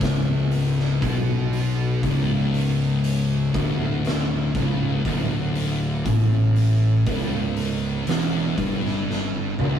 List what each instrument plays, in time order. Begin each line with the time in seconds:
Already playing: fingered electric bass C#1, distorted electric guitar C#2
0.01 kick, snare, open hi-hat
0.51 open hi-hat
0.79 snare
1.02 fingered electric bass B1, distorted electric guitar B2, kick, open hi-hat
1.53 open hi-hat
2.03 fingered electric bass C#1, distorted electric guitar C#2, kick, open hi-hat
2.54 open hi-hat
3.04 open hi-hat
3.54 fingered electric bass D1, distorted electric guitar D2, kick, open hi-hat
4.05 snare, open hi-hat
4.54 fingered electric bass C#1, distorted electric guitar C#2, kick, open hi-hat
5.05 fingered electric bass D1, distorted electric guitar D2, kick, open hi-hat
5.55 open hi-hat
6.05 fingered electric bass A1, distorted electric guitar A2, kick, open hi-hat
6.56 open hi-hat
7.06 fingered electric bass C#1, distorted electric guitar C#2, kick, open hi-hat
7.57 open hi-hat
8.07 fingered electric bass E1, distorted electric guitar E2, snare, open hi-hat
8.57 fingered electric bass G1, distorted electric guitar G2, kick, open hi-hat
8.86 snare
9.11 snare
9.58 fingered electric bass C#1, distorted electric guitar C#2, mid tom